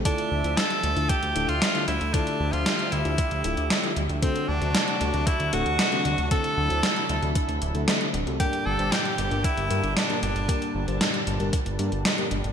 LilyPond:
<<
  \new Staff \with { instrumentName = "Tenor saxophone" } { \time 4/4 \key g \dorian \tempo 4 = 115 d'4 a'4 g'8. f'8. e'8 | d'8. f'8. e'2 r8 | c'8 d'4. e'8 fis'4. | a'2 r2 |
g'8 a'8 g'4 e'4 d'8 d'8~ | d'8 r2. r8 | }
  \new Staff \with { instrumentName = "FM electric piano" } { \time 4/4 \key g \dorian <d a d' e' f' a'>8. <d a d' e' f' c''>4 <d a d' e' f' a'>16 r8 <d a d' e' f' a'>16 r8 <d a d' e' f' a'>16 r8 | <d a d' e' f' a'>8. <d a d' f' c'' e''>4 <d a d' e' f' a'>16 r8 <d a d' e' f' a'>16 r8 <d a d' e' f' a'>16 r8 | <d a c' d' fis' a'>8. <d a c' d' fis' c''>4 <d a c' d' fis' a'>16 r8 <d a c' d' fis' a'>16 r8 <d a c' d' fis' a'>16 r8 | <d a c' d' fis' a'>8. <d a c' d' fis' c''>4 <d a c' d' fis' a'>16 r8. <d a c' d' fis' a'>16 <d a c' d' fis' a'>8. <a c' d' fis' a'>16 |
<g, g bes d' g' bes'>8. <g, g bes d' g' c''>4 <g, g bes d' g' bes'>16 r8 <g, g bes d' g' bes'>16 r8 <g, g bes d' g' bes'>16 r8 | <g, g bes d' g' bes'>8. <g, g bes d' g' c''>4 <g, g bes d' g' bes'>16 r8 <g, g bes d' g' bes'>16 r8 <g, g bes d' g' bes'>16 r8 | }
  \new Staff \with { instrumentName = "Analog synth pad" } { \time 4/4 \key g \dorian << { r1 | g'1 | fis'1 | e'1 |
g'1 | a''1 | } \\ { <d f a e''>1~ | <d f a e''>1 | <c fis a d'>1~ | <c fis a d'>1 |
<bes, d g d'>1~ | <bes, d g d'>1 | } >> }
  \new Staff \with { instrumentName = "Analog synth bass" } { \clef bass \time 4/4 \key g \dorian r8 d,16 d,16 r8 d,16 d,16 r16 d,16 d,,16 d,16 r8 d,16 d,16 | r8 d,16 d,16 r8 d,16 d,16 r16 d,16 d,,16 d,16 r8 d,16 d,16 | r8 d,16 d,16 r8 d,16 d,16 r16 d,16 d,,16 d,16 r8 d,16 d,16 | r8 d,16 d,16 r8 d,16 d,16 r16 d,16 d,,16 d,16 r8 d,,16 c,16 |
r8 g,,16 g,,16 r8 g,,16 g,,16 r16 g,,16 g,16 g,,16 r8 g,,16 g,,16 | r8 g,,16 g,,16 r8 g,,16 g,,16 r16 g,,16 g,16 g,,16 r8 g,,16 g,,16 | }
  \new DrumStaff \with { instrumentName = "Drums" } \drummode { \time 4/4 <hh bd>16 hh8 hh16 <hh sn>16 hh16 hh16 hh16 <hh bd>16 hh16 hh16 hh16 <hh sn>16 hh16 hh16 hh16 | <hh bd>16 hh8 hh16 <hh sn>16 hh16 hh16 hh16 <hh bd>16 hh16 hh16 hh16 <hh sn>16 hh16 hh16 hh16 | <hh bd>16 hh8 hh16 <hh sn>16 hh16 hh16 hh16 <hh bd>16 hh16 hh16 hh16 <hh sn>16 hh16 hh16 hh16 | <hh bd>16 hh8 hh16 <hh sn>16 hh16 hh16 hh16 <hh bd>16 hh16 hh16 hh16 <hh sn>16 hh16 hh16 hh16 |
<hh bd>16 hh8 hh16 <hh sn>16 hh16 hh16 hh16 <hh bd>16 hh16 hh16 hh16 <hh sn>16 hh16 hh16 hh16 | <hh bd>16 hh8 hh16 <hh sn>16 hh16 hh16 hh16 <hh bd>16 hh16 hh16 hh16 <hh sn>16 hh16 hh16 hh16 | }
>>